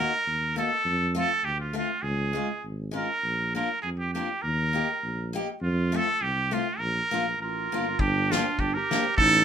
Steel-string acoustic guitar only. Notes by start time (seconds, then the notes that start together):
Already playing: A#3
0.00 D#4 F#4
0.56 A#3 D#4 F#4
1.15 A3 C4 F4
1.73 A3 C4 F4
2.33 G#3 C#4 F4
2.91 G#3 C#4 F4
3.55 A#3 D4 F4
4.15 A#3 D4 F4
4.73 A#3 D#4 G4
5.33 A#3 D#4 G4
5.92 A3 C4 F4
6.51 A3 C4 F4
7.11 A#3 D4 F4
7.72 A#3 D4 F4
8.32 A#3 D4 G4
8.91 A#3 D4 G4